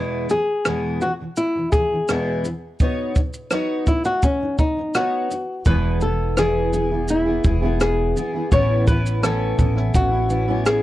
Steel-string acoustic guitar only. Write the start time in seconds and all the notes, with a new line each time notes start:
Already playing: E2 B2 E3 G#3 B3 E4
0.29 E2 B2 E3
0.65 E2 B2 E3 G#3 B3 E4
1.01 E2 B2 E3
1.19 E2 B2 E3
1.55 E2 B2 E3
1.73 E2 B2 E3
1.91 E2 B2 E3
2.08 E2 B2 E3 G#3 B3 E4
2.44 E2 B2 E3
2.80 B3 D#4 F#4 C#5
3.15 B3 D#4
3.52 B3 D#4 F#4 C#5
3.87 B3 D#4
4.05 B3 D#4
4.40 B3 D#4
4.58 B3 D#4
4.77 B3 D#4
4.95 B3 D#4 F#4 C#5
5.31 B3 D#4
5.66 E2 B2 E3 B3 E4 G#4
6.01 E3 B3 E4
6.37 E2 B2 E3 B3 E4 G#4
6.73 E3 B3 E4 G#4
6.90 E3 B3 E4 G#4
7.25 E3 B3 E4 G#4
7.44 E3 B3 E4 G#4
7.62 E2 B2 E3 B3 E4 G#4
8.15 E3 B3 E4 G#4
8.33 E3 B3 E4 G#4
8.51 A2 E3 B3 C#4 E4
8.87 E3 B3 C#4 E4
9.22 A2 E3 B3 C#4 E4
9.57 E3 B3 C#4 E4
9.75 B3 C#4 E4
10.11 B3 C#4 E4
10.29 E3 B3 C#4 E4
10.48 A2 E3 B3 C#4 E4